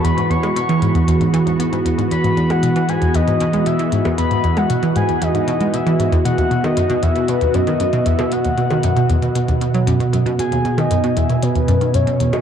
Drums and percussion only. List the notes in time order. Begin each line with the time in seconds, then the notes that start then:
0.05 closed hi-hat
0.18 closed hi-hat
0.31 closed hi-hat
0.43 closed hi-hat, percussion blips
0.56 closed hi-hat
0.69 closed hi-hat
0.82 closed hi-hat
0.95 closed hi-hat
1.08 closed hi-hat
1.21 closed hi-hat
1.34 closed hi-hat
1.47 closed hi-hat
1.60 closed hi-hat
1.73 closed hi-hat
1.86 closed hi-hat
1.99 closed hi-hat
2.11 closed hi-hat
2.24 closed hi-hat
2.37 closed hi-hat
2.50 closed hi-hat, percussion blips
2.63 closed hi-hat
2.76 closed hi-hat
2.89 closed hi-hat
3.02 closed hi-hat
3.14 closed hi-hat
3.28 closed hi-hat
3.40 closed hi-hat
3.53 closed hi-hat
3.66 closed hi-hat
3.79 closed hi-hat
3.92 closed hi-hat
4.05 closed hi-hat, percussion blips
4.18 closed hi-hat
4.31 closed hi-hat
4.44 closed hi-hat
4.57 closed hi-hat, percussion blips
4.70 closed hi-hat
4.83 closed hi-hat
4.96 closed hi-hat
5.09 closed hi-hat
5.22 closed hi-hat
5.35 closed hi-hat
5.48 closed hi-hat
5.61 closed hi-hat
5.74 closed hi-hat
5.87 closed hi-hat
6.00 closed hi-hat
6.12 closed hi-hat
6.25 closed hi-hat
6.38 closed hi-hat
6.51 closed hi-hat
6.64 closed hi-hat, percussion blips
6.77 closed hi-hat
6.90 closed hi-hat
7.03 closed hi-hat
7.16 closed hi-hat
7.28 closed hi-hat
7.41 closed hi-hat
7.54 closed hi-hat
7.67 closed hi-hat
7.80 closed hi-hat
7.93 closed hi-hat
8.06 closed hi-hat
8.19 closed hi-hat, percussion blips
8.32 closed hi-hat
8.45 closed hi-hat
8.58 closed hi-hat
8.71 closed hi-hat, percussion blips
8.83 closed hi-hat
8.97 closed hi-hat
9.10 closed hi-hat
9.22 closed hi-hat
9.35 closed hi-hat
9.48 closed hi-hat
9.61 closed hi-hat
9.75 closed hi-hat
9.87 closed hi-hat
10.00 closed hi-hat
10.13 closed hi-hat
10.26 closed hi-hat
10.39 closed hi-hat
10.52 closed hi-hat
10.65 closed hi-hat
10.78 closed hi-hat, percussion blips
10.91 closed hi-hat
11.04 closed hi-hat
11.17 closed hi-hat
11.30 closed hi-hat
11.43 closed hi-hat
11.56 closed hi-hat
11.68 closed hi-hat
11.81 closed hi-hat
11.94 closed hi-hat
12.07 closed hi-hat
12.20 closed hi-hat
12.33 closed hi-hat, percussion blips